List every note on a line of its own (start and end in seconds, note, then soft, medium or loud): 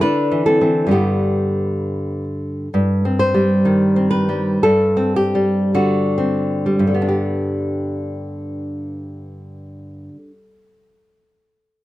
0.01 0.87 D3 medium
0.01 0.42 D4 soft
0.01 0.43 B4 medium
0.32 0.60 E3 soft
0.46 0.60 C4 soft
0.46 0.88 A4 medium
0.61 0.87 E3 soft
0.61 0.87 C4 soft
0.87 2.67 G2 soft
0.87 2.68 D3 soft
0.91 2.24 B3 soft
0.91 2.23 G4 soft
2.74 4.57 G2 soft
3.05 3.95 C4 soft
3.19 4.07 C5 medium
3.34 4.28 G3 soft
3.65 4.61 D#3 soft
3.96 4.61 C4 soft
4.11 4.58 B4 medium
4.29 4.61 G3 soft
4.63 6.78 G2 medium
4.63 5.13 A4 medium
4.97 6.17 C4 soft
5.16 5.72 G4 medium
5.35 6.65 G3 soft
5.75 6.86 D3 soft
5.75 7.06 F#4 medium
6.18 7.01 C4 soft
6.66 6.94 G3 soft
6.79 10.08 G2 soft
6.87 10.16 D3 soft
6.94 10.23 B3 soft
7.02 10.31 D4 soft
7.08 10.37 G4 soft